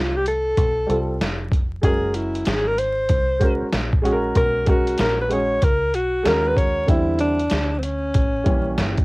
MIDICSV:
0, 0, Header, 1, 6, 480
1, 0, Start_track
1, 0, Tempo, 631579
1, 1392, Time_signature, 4, 2, 24, 8
1, 6877, End_track
2, 0, Start_track
2, 0, Title_t, "Alto saxophone"
2, 0, Program_c, 0, 65
2, 0, Note_on_c, 0, 65, 93
2, 124, Note_on_c, 0, 67, 106
2, 136, Note_off_c, 0, 65, 0
2, 200, Note_off_c, 0, 67, 0
2, 211, Note_on_c, 0, 69, 103
2, 891, Note_off_c, 0, 69, 0
2, 1401, Note_on_c, 0, 68, 97
2, 1637, Note_on_c, 0, 64, 82
2, 1649, Note_off_c, 0, 68, 0
2, 1877, Note_on_c, 0, 68, 95
2, 1889, Note_off_c, 0, 64, 0
2, 2034, Note_on_c, 0, 70, 107
2, 2045, Note_off_c, 0, 68, 0
2, 2119, Note_on_c, 0, 72, 99
2, 2130, Note_off_c, 0, 70, 0
2, 2835, Note_off_c, 0, 72, 0
2, 3323, Note_on_c, 0, 70, 115
2, 3569, Note_on_c, 0, 66, 94
2, 3580, Note_off_c, 0, 70, 0
2, 3800, Note_off_c, 0, 66, 0
2, 3807, Note_on_c, 0, 70, 104
2, 3945, Note_off_c, 0, 70, 0
2, 3963, Note_on_c, 0, 71, 98
2, 4048, Note_on_c, 0, 73, 102
2, 4059, Note_off_c, 0, 71, 0
2, 4286, Note_on_c, 0, 70, 116
2, 4297, Note_off_c, 0, 73, 0
2, 4521, Note_on_c, 0, 66, 102
2, 4533, Note_off_c, 0, 70, 0
2, 4762, Note_on_c, 0, 70, 102
2, 4774, Note_off_c, 0, 66, 0
2, 4923, Note_on_c, 0, 71, 97
2, 4934, Note_off_c, 0, 70, 0
2, 4994, Note_on_c, 0, 73, 103
2, 5006, Note_off_c, 0, 71, 0
2, 5233, Note_off_c, 0, 73, 0
2, 5242, Note_on_c, 0, 64, 91
2, 5460, Note_off_c, 0, 64, 0
2, 5475, Note_on_c, 0, 62, 98
2, 5920, Note_on_c, 0, 60, 66
2, 5932, Note_off_c, 0, 62, 0
2, 5960, Note_on_c, 0, 61, 82
2, 5972, Note_off_c, 0, 60, 0
2, 6877, Note_off_c, 0, 61, 0
2, 6877, End_track
3, 0, Start_track
3, 0, Title_t, "Grand piano"
3, 0, Program_c, 1, 0
3, 657, Note_on_c, 1, 55, 64
3, 668, Note_on_c, 1, 60, 54
3, 678, Note_on_c, 1, 65, 54
3, 687, Note_on_c, 1, 69, 68
3, 854, Note_off_c, 1, 55, 0
3, 859, Note_off_c, 1, 60, 0
3, 864, Note_off_c, 1, 65, 0
3, 869, Note_off_c, 1, 69, 0
3, 1380, Note_on_c, 1, 56, 63
3, 1389, Note_on_c, 1, 61, 61
3, 1400, Note_on_c, 1, 66, 59
3, 1410, Note_on_c, 1, 70, 72
3, 2072, Note_off_c, 1, 56, 0
3, 2077, Note_off_c, 1, 61, 0
3, 2082, Note_off_c, 1, 66, 0
3, 2087, Note_off_c, 1, 70, 0
3, 2581, Note_on_c, 1, 56, 67
3, 2591, Note_on_c, 1, 61, 65
3, 2600, Note_on_c, 1, 66, 67
3, 2610, Note_on_c, 1, 70, 72
3, 2776, Note_off_c, 1, 56, 0
3, 2780, Note_off_c, 1, 61, 0
3, 2785, Note_off_c, 1, 66, 0
3, 2790, Note_off_c, 1, 70, 0
3, 3055, Note_on_c, 1, 56, 78
3, 3066, Note_on_c, 1, 61, 80
3, 3078, Note_on_c, 1, 66, 80
3, 3085, Note_on_c, 1, 68, 69
3, 3136, Note_on_c, 1, 70, 91
3, 3143, Note_off_c, 1, 68, 0
3, 3526, Note_off_c, 1, 56, 0
3, 3537, Note_off_c, 1, 61, 0
3, 3537, Note_on_c, 1, 56, 69
3, 3548, Note_off_c, 1, 66, 0
3, 3549, Note_on_c, 1, 61, 62
3, 3557, Note_off_c, 1, 70, 0
3, 3559, Note_on_c, 1, 66, 67
3, 3569, Note_on_c, 1, 70, 80
3, 4010, Note_off_c, 1, 56, 0
3, 4020, Note_off_c, 1, 61, 0
3, 4022, Note_on_c, 1, 56, 73
3, 4028, Note_off_c, 1, 66, 0
3, 4032, Note_on_c, 1, 61, 62
3, 4039, Note_on_c, 1, 66, 57
3, 4050, Note_on_c, 1, 68, 76
3, 4216, Note_off_c, 1, 56, 0
3, 4221, Note_off_c, 1, 61, 0
3, 4225, Note_off_c, 1, 66, 0
3, 4230, Note_off_c, 1, 68, 0
3, 4246, Note_off_c, 1, 70, 0
3, 4736, Note_on_c, 1, 56, 78
3, 4747, Note_on_c, 1, 61, 72
3, 4757, Note_on_c, 1, 66, 70
3, 4766, Note_on_c, 1, 70, 93
3, 5215, Note_on_c, 1, 50, 69
3, 5224, Note_off_c, 1, 56, 0
3, 5225, Note_on_c, 1, 55, 62
3, 5229, Note_off_c, 1, 61, 0
3, 5234, Note_off_c, 1, 66, 0
3, 5236, Note_on_c, 1, 60, 62
3, 5239, Note_off_c, 1, 70, 0
3, 5245, Note_on_c, 1, 64, 75
3, 5588, Note_off_c, 1, 50, 0
3, 5593, Note_off_c, 1, 55, 0
3, 5598, Note_off_c, 1, 60, 0
3, 5603, Note_off_c, 1, 64, 0
3, 6414, Note_on_c, 1, 52, 63
3, 6421, Note_on_c, 1, 55, 63
3, 6433, Note_on_c, 1, 58, 55
3, 6442, Note_on_c, 1, 61, 74
3, 6877, Note_off_c, 1, 52, 0
3, 6877, Note_off_c, 1, 55, 0
3, 6877, Note_off_c, 1, 58, 0
3, 6877, Note_off_c, 1, 61, 0
3, 6877, End_track
4, 0, Start_track
4, 0, Title_t, "Fingered electric bass"
4, 0, Program_c, 2, 33
4, 0, Note_on_c, 2, 36, 75
4, 410, Note_off_c, 2, 36, 0
4, 437, Note_on_c, 2, 35, 93
4, 662, Note_off_c, 2, 35, 0
4, 678, Note_on_c, 2, 36, 91
4, 903, Note_off_c, 2, 36, 0
4, 918, Note_on_c, 2, 29, 85
4, 1371, Note_off_c, 2, 29, 0
4, 1395, Note_on_c, 2, 30, 104
4, 1850, Note_off_c, 2, 30, 0
4, 1880, Note_on_c, 2, 32, 86
4, 2332, Note_off_c, 2, 32, 0
4, 2355, Note_on_c, 2, 36, 90
4, 2729, Note_off_c, 2, 36, 0
4, 2841, Note_on_c, 2, 34, 99
4, 3293, Note_off_c, 2, 34, 0
4, 3313, Note_on_c, 2, 35, 105
4, 3768, Note_off_c, 2, 35, 0
4, 3800, Note_on_c, 2, 34, 89
4, 4252, Note_off_c, 2, 34, 0
4, 4277, Note_on_c, 2, 37, 98
4, 4520, Note_off_c, 2, 37, 0
4, 4520, Note_on_c, 2, 35, 92
4, 4744, Note_off_c, 2, 35, 0
4, 4755, Note_on_c, 2, 39, 82
4, 5210, Note_off_c, 2, 39, 0
4, 5233, Note_on_c, 2, 40, 92
4, 5688, Note_off_c, 2, 40, 0
4, 5717, Note_on_c, 2, 38, 84
4, 6170, Note_off_c, 2, 38, 0
4, 6195, Note_on_c, 2, 33, 87
4, 6422, Note_off_c, 2, 33, 0
4, 6431, Note_on_c, 2, 34, 86
4, 6675, Note_on_c, 2, 31, 91
4, 6686, Note_off_c, 2, 34, 0
4, 6877, Note_off_c, 2, 31, 0
4, 6877, End_track
5, 0, Start_track
5, 0, Title_t, "Muted fingered electric bass strokes"
5, 2754, Note_on_c, 9, 29, 51
5, 2830, Note_off_c, 9, 29, 0
5, 6877, End_track
6, 0, Start_track
6, 0, Title_t, "Drums"
6, 196, Note_on_c, 9, 42, 73
6, 272, Note_off_c, 9, 42, 0
6, 434, Note_on_c, 9, 42, 89
6, 435, Note_on_c, 9, 36, 96
6, 510, Note_off_c, 9, 42, 0
6, 511, Note_off_c, 9, 36, 0
6, 681, Note_on_c, 9, 42, 70
6, 757, Note_off_c, 9, 42, 0
6, 920, Note_on_c, 9, 38, 104
6, 920, Note_on_c, 9, 42, 79
6, 996, Note_off_c, 9, 38, 0
6, 996, Note_off_c, 9, 42, 0
6, 1152, Note_on_c, 9, 36, 94
6, 1165, Note_on_c, 9, 42, 57
6, 1228, Note_off_c, 9, 36, 0
6, 1241, Note_off_c, 9, 42, 0
6, 1392, Note_on_c, 9, 36, 103
6, 1393, Note_on_c, 9, 42, 92
6, 1468, Note_off_c, 9, 36, 0
6, 1469, Note_off_c, 9, 42, 0
6, 1627, Note_on_c, 9, 42, 69
6, 1703, Note_off_c, 9, 42, 0
6, 1787, Note_on_c, 9, 42, 52
6, 1863, Note_off_c, 9, 42, 0
6, 1865, Note_on_c, 9, 42, 80
6, 1876, Note_on_c, 9, 38, 111
6, 1941, Note_off_c, 9, 42, 0
6, 1952, Note_off_c, 9, 38, 0
6, 2114, Note_on_c, 9, 42, 73
6, 2190, Note_off_c, 9, 42, 0
6, 2349, Note_on_c, 9, 42, 84
6, 2354, Note_on_c, 9, 36, 86
6, 2425, Note_off_c, 9, 42, 0
6, 2430, Note_off_c, 9, 36, 0
6, 2591, Note_on_c, 9, 36, 89
6, 2593, Note_on_c, 9, 42, 66
6, 2667, Note_off_c, 9, 36, 0
6, 2669, Note_off_c, 9, 42, 0
6, 2833, Note_on_c, 9, 38, 114
6, 2833, Note_on_c, 9, 42, 90
6, 2909, Note_off_c, 9, 38, 0
6, 2909, Note_off_c, 9, 42, 0
6, 2987, Note_on_c, 9, 36, 91
6, 3063, Note_off_c, 9, 36, 0
6, 3081, Note_on_c, 9, 42, 63
6, 3157, Note_off_c, 9, 42, 0
6, 3309, Note_on_c, 9, 42, 82
6, 3311, Note_on_c, 9, 36, 101
6, 3385, Note_off_c, 9, 42, 0
6, 3387, Note_off_c, 9, 36, 0
6, 3546, Note_on_c, 9, 42, 65
6, 3551, Note_on_c, 9, 36, 93
6, 3622, Note_off_c, 9, 42, 0
6, 3627, Note_off_c, 9, 36, 0
6, 3703, Note_on_c, 9, 42, 55
6, 3779, Note_off_c, 9, 42, 0
6, 3783, Note_on_c, 9, 42, 77
6, 3794, Note_on_c, 9, 38, 117
6, 3859, Note_off_c, 9, 42, 0
6, 3870, Note_off_c, 9, 38, 0
6, 4033, Note_on_c, 9, 42, 73
6, 4109, Note_off_c, 9, 42, 0
6, 4271, Note_on_c, 9, 42, 89
6, 4275, Note_on_c, 9, 36, 93
6, 4347, Note_off_c, 9, 42, 0
6, 4351, Note_off_c, 9, 36, 0
6, 4514, Note_on_c, 9, 42, 62
6, 4590, Note_off_c, 9, 42, 0
6, 4753, Note_on_c, 9, 38, 117
6, 4754, Note_on_c, 9, 42, 83
6, 4829, Note_off_c, 9, 38, 0
6, 4830, Note_off_c, 9, 42, 0
6, 4990, Note_on_c, 9, 36, 85
6, 5000, Note_on_c, 9, 42, 62
6, 5066, Note_off_c, 9, 36, 0
6, 5076, Note_off_c, 9, 42, 0
6, 5231, Note_on_c, 9, 36, 100
6, 5232, Note_on_c, 9, 42, 92
6, 5307, Note_off_c, 9, 36, 0
6, 5308, Note_off_c, 9, 42, 0
6, 5463, Note_on_c, 9, 42, 63
6, 5539, Note_off_c, 9, 42, 0
6, 5621, Note_on_c, 9, 42, 54
6, 5697, Note_off_c, 9, 42, 0
6, 5698, Note_on_c, 9, 42, 82
6, 5709, Note_on_c, 9, 38, 108
6, 5774, Note_off_c, 9, 42, 0
6, 5785, Note_off_c, 9, 38, 0
6, 5950, Note_on_c, 9, 42, 71
6, 6026, Note_off_c, 9, 42, 0
6, 6187, Note_on_c, 9, 42, 89
6, 6192, Note_on_c, 9, 36, 99
6, 6263, Note_off_c, 9, 42, 0
6, 6268, Note_off_c, 9, 36, 0
6, 6428, Note_on_c, 9, 42, 68
6, 6429, Note_on_c, 9, 36, 94
6, 6504, Note_off_c, 9, 42, 0
6, 6505, Note_off_c, 9, 36, 0
6, 6671, Note_on_c, 9, 38, 104
6, 6672, Note_on_c, 9, 42, 85
6, 6747, Note_off_c, 9, 38, 0
6, 6748, Note_off_c, 9, 42, 0
6, 6821, Note_on_c, 9, 42, 48
6, 6826, Note_on_c, 9, 36, 96
6, 6877, Note_off_c, 9, 36, 0
6, 6877, Note_off_c, 9, 42, 0
6, 6877, End_track
0, 0, End_of_file